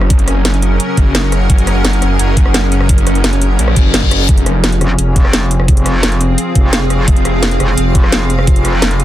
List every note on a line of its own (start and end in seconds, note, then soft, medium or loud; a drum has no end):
0.00 0.79 F#1 loud
0.00 4.25 F#3 medium
0.00 4.25 C#4 medium
0.00 4.29 C#4 medium
0.00 9.04 G#4 medium
0.00 4.25 A#4 medium
0.00 5.55 A#4 medium
0.00 4.29 F#5 medium
0.00 cross-stick soft
0.10 kick loud
0.10 closed hi-hat medium
0.19 closed hi-hat soft
0.28 cross-stick soft
0.28 closed hi-hat medium
0.45 snare loud
0.45 closed hi-hat loud
0.54 closed hi-hat soft
0.62 closed hi-hat medium
0.80 closed hi-hat medium
0.97 1.48 F#1 loud
0.97 kick loud
0.97 closed hi-hat medium
1.15 snare loud
1.15 closed hi-hat medium
1.32 cross-stick soft
1.32 closed hi-hat medium
1.50 2.01 F#1 medium
1.50 kick loud
1.50 closed hi-hat medium
1.58 closed hi-hat soft
1.67 cross-stick soft
1.67 closed hi-hat medium
1.85 snare loud
1.85 closed hi-hat loud
1.93 closed hi-hat soft
2.02 2.18 F#1 loud
2.02 cross-stick soft
2.02 closed hi-hat medium
2.19 3.58 F#1 loud
2.19 closed hi-hat medium
2.37 kick loud
2.37 closed hi-hat medium
2.46 cross-stick soft
2.54 snare loud
2.54 closed hi-hat loud
2.72 closed hi-hat medium
2.81 cross-stick soft
2.89 kick loud
2.89 closed hi-hat loud
2.98 closed hi-hat soft
3.07 cross-stick soft
3.07 closed hi-hat medium
3.15 closed hi-hat soft
3.24 snare loud
3.24 closed hi-hat loud
3.33 closed hi-hat soft
3.42 closed hi-hat medium
3.59 3.75 A#1 loud
3.59 closed hi-hat loud
3.59 reverse cymbal medium
3.68 cross-stick medium
3.76 4.27 F#1 loud
3.76 kick loud
3.76 closed hi-hat medium
3.94 snare loud
3.94 closed hi-hat loud
4.03 kick medium
4.11 cross-stick soft
4.11 closed hi-hat medium
4.29 4.80 F1 medium
4.29 9.04 F3 medium
4.29 9.04 C4 medium
4.29 9.04 F4 medium
4.29 kick loud
4.29 closed hi-hat loud
4.38 closed hi-hat soft
4.46 9.04 G#4 medium
4.46 cross-stick soft
4.46 closed hi-hat medium
4.64 snare loud
4.64 closed hi-hat loud
4.72 closed hi-hat soft
4.81 4.97 F1 loud
4.81 cross-stick medium
4.81 closed hi-hat medium
4.91 9.04 F5 loud
4.99 6.37 F1 loud
4.99 closed hi-hat loud
5.16 kick loud
5.16 closed hi-hat medium
5.25 cross-stick medium
5.33 snare loud
5.33 closed hi-hat loud
5.51 closed hi-hat medium
5.60 cross-stick soft
5.68 kick loud
5.68 closed hi-hat medium
5.77 closed hi-hat soft
5.86 cross-stick medium
5.86 closed hi-hat medium
6.03 snare loud
6.03 closed hi-hat loud
6.12 closed hi-hat soft
6.21 closed hi-hat medium
6.38 closed hi-hat medium
6.55 7.06 F1 medium
6.55 kick loud
6.55 closed hi-hat medium
6.73 snare loud
6.73 closed hi-hat loud
6.90 cross-stick medium
6.90 closed hi-hat medium
7.08 7.59 F1 loud
7.08 kick loud
7.08 closed hi-hat medium
7.16 closed hi-hat soft
7.25 cross-stick soft
7.25 closed hi-hat medium
7.43 snare loud
7.43 closed hi-hat medium
7.51 closed hi-hat soft
7.60 7.76 F1 loud
7.60 cross-stick medium
7.60 closed hi-hat medium
7.78 9.04 F1 loud
7.78 closed hi-hat medium
7.95 kick loud
7.95 closed hi-hat medium
8.04 cross-stick soft
8.12 snare loud
8.12 closed hi-hat medium
8.30 closed hi-hat medium
8.39 cross-stick medium
8.47 kick loud
8.47 closed hi-hat medium
8.56 closed hi-hat soft
8.65 cross-stick soft
8.65 closed hi-hat medium
8.82 snare loud
8.82 closed hi-hat medium
8.91 closed hi-hat soft
9.00 closed hi-hat medium